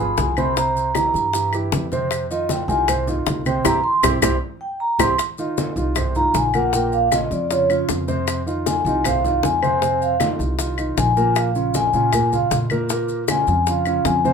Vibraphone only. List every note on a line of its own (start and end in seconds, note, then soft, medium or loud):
0.00 0.18 B5 loud
0.18 0.37 G#5 medium
0.38 0.57 B5 loud
0.57 0.93 A#5 medium
0.97 1.50 A#5 medium
2.31 2.49 D#5 medium
2.51 2.69 G5 medium
2.68 2.87 G#5 loud
3.46 3.65 G5 medium
3.65 3.84 A#5 medium
3.84 4.03 C6 loud
4.61 4.80 G5 medium
4.80 4.99 A#5 medium
5.00 5.11 C6 loud
6.16 6.35 A#5 loud
6.36 6.54 G#5 medium
6.54 6.73 F#5 medium
6.74 6.93 G5 loud
6.93 7.12 F5 medium
7.13 7.31 D#5 medium
7.32 7.50 D5 medium
7.51 7.70 C#5 medium
7.70 7.82 F4 medium
8.67 9.03 G#5 medium
9.05 9.41 F5 medium
9.44 9.98 G#5 medium
10.02 10.20 F5 medium
10.98 11.34 G#5 loud
11.37 11.73 F5 medium
11.76 12.29 G#5 loud
12.33 12.51 F5 medium
13.30 13.65 G#5 loud
13.68 14.03 F5 medium
14.06 14.33 G#5 loud